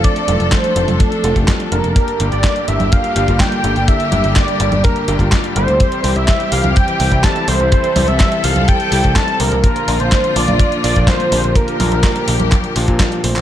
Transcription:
Already playing: F3 A3 C4 F4 A4 C5
0.04 D4 D5, kick, closed hi-hat
0.16 closed hi-hat
0.28 F1 A3 C4 F4 A4, closed hi-hat, high conga
0.40 F1, closed hi-hat
0.52 C5, kick, snare, clap, closed hi-hat
0.64 closed hi-hat
0.76 F1 A3 C4 F4 A4, closed hi-hat
0.88 F1, closed hi-hat, high conga
1.00 A4, kick, closed hi-hat
1.12 closed hi-hat
1.24 F1 A3 C4 F4 A4, closed hi-hat
1.36 F1 A3 C4 F4 G4, kick, closed hi-hat
1.48 kick, snare, clap, closed hi-hat
1.60 closed hi-hat
1.72 F1 G2 G3 A#3 D4 A#4 A5, closed hi-hat
1.84 F1, closed hi-hat
1.96 D3 G3 A#3 G4, kick, closed hi-hat
2.08 closed hi-hat
2.20 G1 G2 G3 A#3 D4 G4, closed hi-hat
2.32 G1 D5, closed hi-hat
2.44 kick, snare, clap, closed hi-hat
2.56 closed hi-hat
2.68 G1 G2 G3 A#3 D4 G4 E5, closed hi-hat
2.80 G1, closed hi-hat, high conga
2.92 F5, kick, closed hi-hat
3.04 closed hi-hat
3.16 G1 G2 G3 A#3 D4 G4, closed hi-hat
3.28 G1 G2 G3 A#3 D4 F4, kick, closed hi-hat
3.40 G5, kick, snare, clap, closed hi-hat
3.52 closed hi-hat
3.64 G1 G2 G3 A#3 D4 A4, closed hi-hat
3.76 G1, closed hi-hat
3.88 E5, kick, closed hi-hat
4.00 closed hi-hat
4.12 G1 G2 G3 A#3 D4 G4, closed hi-hat, high conga
4.24 G1, closed hi-hat
4.36 D5, kick, snare, clap, closed hi-hat
4.48 closed hi-hat
4.60 G1 G2 G3 A#3 D4 G4, closed hi-hat
4.72 G1, closed hi-hat, high conga
4.84 A#4, kick, closed hi-hat
4.96 closed hi-hat
5.08 G1 G2 G3 A#3 D4 G4, closed hi-hat
5.19 G1 G2 G3 A#3 D4 F4, kick, closed hi-hat
5.32 kick, snare, clap, closed hi-hat
5.44 closed hi-hat
5.56 G1 C3 G3 C4 E4 A4 C5, closed hi-hat
5.68 D2, closed hi-hat
5.80 E3 C4 G4, kick, closed hi-hat
5.92 closed hi-hat
6.04 C2 C3 G3 C4 E4 G4, open hi-hat
6.16 C2 E5, closed hi-hat
6.28 kick, snare, clap, closed hi-hat
6.40 closed hi-hat
6.52 C2 C3 G3 C4 E4 G4 F5, open hi-hat
6.64 C2, closed hi-hat, high conga
6.76 G5, kick, closed hi-hat
6.88 closed hi-hat
7.00 C2 C3 G3 C4 E4 G4, open hi-hat
7.12 C2 C3 G3 C4 E4 G4, kick, closed hi-hat
7.24 A5, kick, snare, clap, closed hi-hat
7.36 closed hi-hat
7.48 C2 C3 G3 C4 E4 A4 C5, open hi-hat
7.60 C2, closed hi-hat
7.72 A4, kick, closed hi-hat
7.84 closed hi-hat
7.96 C2 C3 G3 C4 E4 G4, open hi-hat, high conga
8.08 C2 E5, closed hi-hat
8.20 kick, snare, clap, closed hi-hat
8.32 closed hi-hat
8.44 C2 C3 G3 C4 E4 G4 F5, open hi-hat
8.56 C2, closed hi-hat, high conga
8.68 G5, kick, closed hi-hat
8.80 closed hi-hat
8.92 C2 C3 G3 C4 E4 G4, open hi-hat
9.04 C2 C3 G3 C4 E4 G4, kick, closed hi-hat
9.16 A5, kick, snare, clap, closed hi-hat
9.28 closed hi-hat
9.40 C2 A#2 F3 A#3 D4 G4 A#4, open hi-hat
9.52 C2, closed hi-hat
9.64 D3 F3 A#3 F4, kick, closed hi-hat
9.76 closed hi-hat
9.88 A#1 A#2 F3 A#3 D4 F4, open hi-hat
10.00 A#1 C5, closed hi-hat
10.12 kick, snare, clap, closed hi-hat
10.24 closed hi-hat
10.36 A#1 A#2 F3 A#3 D4 F4 D5, open hi-hat
10.48 A#1, closed hi-hat, high conga
10.60 kick, closed hi-hat
10.72 closed hi-hat
10.84 A#1 A#2 F3 A#3 D4 F4 D5, open hi-hat
10.96 A#1 A#2 F3 A#3 D4 F4, kick, closed hi-hat
11.07 C5, kick, snare, clap, closed hi-hat
11.20 closed hi-hat
11.32 A#1 A#2 F3 A#3 D4 G4, open hi-hat
11.44 A#1, closed hi-hat
11.55 G4 A#4, kick, closed hi-hat
11.68 closed hi-hat
11.80 A#1 A#2 F3 A#3 D4 F4, open hi-hat, high conga
11.92 A#1, closed hi-hat
12.03 kick, snare, clap, closed hi-hat
12.16 closed hi-hat
12.28 A#1 A#2 F3 A#3 D4 F4, open hi-hat
12.40 A#1, closed hi-hat, high conga
12.52 kick, clap, closed hi-hat, high conga
12.64 closed hi-hat
12.76 A#1 A#2 F3 A#3 D4 F4, open hi-hat
12.88 A#2 F3 A#3 D4 F4, kick, closed hi-hat
13.00 kick, snare, clap, closed hi-hat
13.12 closed hi-hat
13.24 A#1 A3 C4 F4 C5, open hi-hat
13.36 A#1, clap, closed hi-hat

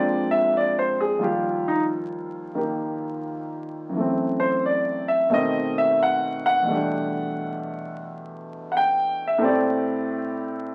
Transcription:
Already playing: A#2 F3 G#3 C4 D4 G4 D5
0.31 E5
0.57 D5
0.79 C5
1.01 G#4
1.19 D#2 F3 G3 F4
1.23 G4
1.68 D#4
2.55 D#3 A#3 G4
3.89 F#2 E3
3.97 A3 C4
4.40 C5
4.66 D5
5.08 E5
5.30 B2 A3 C4
5.34 D#3 D#5
5.78 E5
6.03 F#5
6.46 F#5
6.63 E2 B2
6.67 G3 A3
6.72 D4 G4
8.72 F#5
8.77 G5
9.27 E5
9.38 A2 A3 C4
9.43 G4 D5

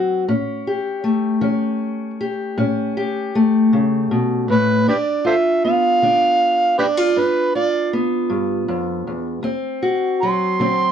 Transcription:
Already playing: F#3 C4 F#4
0.28 A2 C#4
0.67 G4
1.04 A3
1.41 E3 C#4
2.21 G4
2.58 A2 C#4
2.97 G4
3.35 A3
3.73 C#3
4.11 B2
4.50 A2 B4
4.88 G2 D4 G4 B4 D5
5.25 F4 A4 C5 E5
5.64 B3 F5
6.02 D3 D4
6.78 D4 G4 B4 D5
6.97 F4
7.16 G2 D4 B4
7.55 F4 D5
7.93 B3
8.30 G2
8.68 F2
9.07 E2
9.43 D2 C4
9.83 F#4
10.22 F#3 C6
10.60 D3 C4

